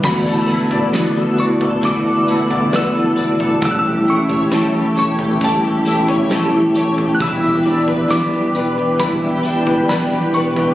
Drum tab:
CC |x---------------|----------------|----------------|
TB |x---x-x-x-x-x-x-|x---x-x-x-x-x-x-|x---x-x-x-x-x-x-|
SD |----o-------o---|----o-------o---|----o-------o---|
FT |o--o---oo--o---o|o--o---oo--o---o|o--o----o--o---o|
BD |o-------o-------|o-------o-------|o-------o-------|